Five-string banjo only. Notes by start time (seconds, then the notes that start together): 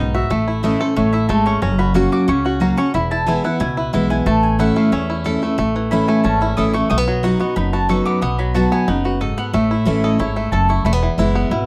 Already playing: B3 F#4
0.00 D#4
0.15 F#4
0.31 A3
0.48 E4
0.64 A3
0.81 A4
0.97 A3
1.14 E4
1.30 A3
1.47 C#4
1.62 C#4
1.79 F#4
1.95 F#4
2.13 F#4
2.29 C#4
2.46 F#4
2.62 F#4
2.78 C#4
2.95 E4
3.12 E4
3.28 E4
3.45 E4
3.61 E4
3.77 E4
3.94 E4
4.10 E4
4.27 A3
4.60 E4
4.77 A3
4.93 C#4
5.10 E4
5.26 A4
5.43 A3
5.59 A3
5.76 E3
5.92 E4
6.09 A3
6.25 C#4
6.42 E4
6.58 A4
6.74 A3
6.91 A3
6.98 B3
7.08 F#3
7.24 F#4
7.41 B3
7.57 D#4
7.73 F#4
7.90 A4
8.06 B3
8.22 B3
8.39 F#3
8.55 F#4
8.72 B3
8.88 D#4
9.05 F#4
9.21 A4
9.38 B3
9.54 A3
9.71 E4
9.87 A3
10.04 A4
10.20 E4
10.37 A3
10.53 A4
10.70 E4
10.86 A3
10.93 B3
11.03 E3
11.19 E4
11.35 B3
11.51 E4